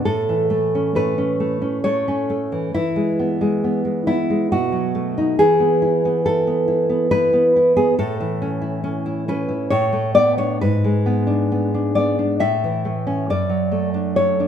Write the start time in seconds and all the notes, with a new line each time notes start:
0.05 A2 A4
0.29 E3
0.50 A3
0.75 C#4
0.95 A3 B4
1.18 C#4
1.40 A3
1.61 C#4
1.84 A3 C#5
2.08 C#4
2.30 A3
2.52 E3
2.74 E3 E4
2.96 G#3
3.19 B3
3.41 G#3
3.64 B3
3.85 G#3
4.07 B3 E4
4.30 G#3
4.52 B2 F#4
4.72 F#3
4.95 A3
5.18 D#4
5.39 E3 G#4
5.60 B3
5.82 E4
6.05 B3
6.26 E4 A4
6.47 B3
6.68 E4
6.89 B3
7.11 E4 B4
7.33 B3
7.56 E4
7.76 B3 G#4
7.99 A2 A4
8.20 E3
8.42 C#4
8.62 E4
8.84 C#4
9.06 E4
9.28 C#4 B4
9.48 E4
9.70 A2 C#5
9.93 A3
10.14 B3 D5
10.38 D4 C#5
10.61 G#2 B4
10.84 G#3
11.06 B3
11.27 D4
11.52 B3
11.74 D4
11.95 B3 D5
12.19 D4
12.40 A2 E5
12.64 E3
12.85 A3
13.07 C#4
13.30 F#2 D5
13.49 F#3
13.72 A3
13.94 D4
14.16 A4 C#5
14.40 D4